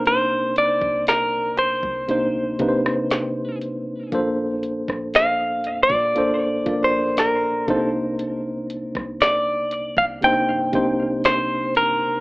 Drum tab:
HH |x-x-x-x-x-x-x-x-|x-x-x-x-x-x-x-x-|x-x-x-x-x-x-x-x-|
SD |----o------ro---|---ro-------o---|---ro-------o---|
BD |---o---o--o-----|o--o---o--o---o-|---o---o--o-----|